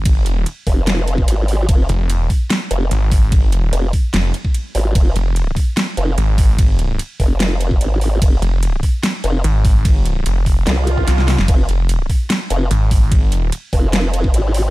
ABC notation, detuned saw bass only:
X:1
M:4/4
L:1/16
Q:1/4=147
K:Fm
V:1 name="Detuned saw bass" clef=bass
A,,,4 z12 | z2 F,,,4 z6 A,,,4- | A,,,4 z4 F,,,2 z6 | z2 F,,,4 z6 A,,,4- |
A,,,4 z12 | z2 F,,,4 z6 A,,,4- | A,,,4 F,,,4 z4 C,,3 F,,, | z2 F,,,4 z6 A,,,4- |
A,,,4 z12 |]